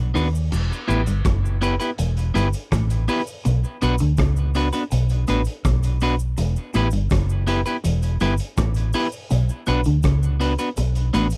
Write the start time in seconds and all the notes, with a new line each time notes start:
Already playing: B1
0.14 D#2 D#3 B3 D4 F#4 B4, cross-stick, open hi-hat, cabasa
0.35 cabasa
0.52 E1 E2, crash, cabasa
0.73 cabasa
0.88 A1 A2 B3 E4 G4 B4, closed hi-hat, cabasa
1.06 G1 G2, closed hi-hat, cabasa
1.25 F#1 F#2, kick, cross-stick, closed hi-hat, cabasa
1.46 cabasa
1.61 B3 E4 G4 B4, closed hi-hat, cabasa
1.80 B3 E4 G4 B4, closed hi-hat, cabasa
1.98 E1 E2, closed hi-hat, cabasa
2.17 closed hi-hat, cabasa
2.34 G1 G2 B3 E4 G4 B4, closed hi-hat, cabasa
2.53 closed hi-hat, cabasa
2.72 A1 A2, kick, cross-stick, closed hi-hat, cabasa
2.90 closed hi-hat, cabasa
3.08 B3 E4 G4 B4, open hi-hat, cabasa
3.27 cabasa
3.45 B1 B2, closed hi-hat, cabasa
3.64 cabasa
3.81 B1 B2 B3 D4 F#4 B4, closed hi-hat, cabasa
3.98 D2 D3, closed hi-hat, cabasa
4.17 C#2 C#3, kick, cross-stick, closed hi-hat, cabasa
4.36 cabasa
4.54 B3 D4 F#4 B4, closed hi-hat, cabasa
4.72 B3 D4 F#4 B4, closed hi-hat, cabasa
4.91 B1 B2, closed hi-hat, cabasa
5.09 closed hi-hat, cabasa
5.27 A1 A2 B3 D4 F#4 B4, closed hi-hat, cabasa
5.45 closed hi-hat, cabasa
5.65 B1 B2, kick, cross-stick, closed hi-hat, cabasa
5.83 closed hi-hat, cabasa
6.00 B3 D4 F#4 B4, closed hi-hat, cabasa
6.19 cabasa
6.37 E1 E2, closed hi-hat, cabasa
6.56 cabasa
6.74 A1 A2 B3 E4 G4 B4, closed hi-hat, cabasa
6.91 G1 G2, closed hi-hat, cabasa
7.10 F#1 F#2, kick, cross-stick, closed hi-hat, cabasa
7.29 cabasa
7.47 B3 E4 G4 B4, closed hi-hat, cabasa
7.66 B3 E4 G4 B4, closed hi-hat, cabasa
7.84 E1 E2, closed hi-hat, cabasa
8.02 closed hi-hat, cabasa
8.20 G1 G2 B3 E4 G4 B4, closed hi-hat, cabasa
8.37 closed hi-hat, cabasa
8.57 A1 A2, kick, cross-stick, closed hi-hat, cabasa
8.74 closed hi-hat, cabasa
8.93 B3 E4 G4 B4, open hi-hat, cabasa
9.12 cabasa
9.30 B1 B2, closed hi-hat, cabasa
9.49 cabasa
9.66 B1 B2 B3 D4 F#4 B4, closed hi-hat, cabasa
9.84 D2 D3, closed hi-hat, cabasa
10.03 C#2 C#3, kick, cross-stick, closed hi-hat, cabasa
10.23 cabasa
10.40 B3 D4 F#4 B4, closed hi-hat, cabasa
10.59 B3 D4 F#4 B4, closed hi-hat, cabasa
10.77 B1 B2, closed hi-hat, cabasa
10.95 closed hi-hat, cabasa
11.13 A1 A2 B3 D4 F#4 B4, closed hi-hat, cabasa
11.30 closed hi-hat, cabasa